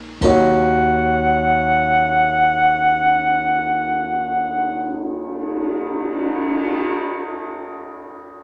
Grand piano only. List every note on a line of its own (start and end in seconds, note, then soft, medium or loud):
0.00 0.20 G#3 soft
0.00 0.22 A#3 soft
0.00 0.21 D#4 soft
0.00 0.24 F4 soft
0.00 0.26 A#4 soft
0.22 4.98 D#2 soft
0.22 4.99 D#3 soft
0.22 4.99 D#4 soft
0.22 5.00 F#4 soft
0.22 5.01 C#5 soft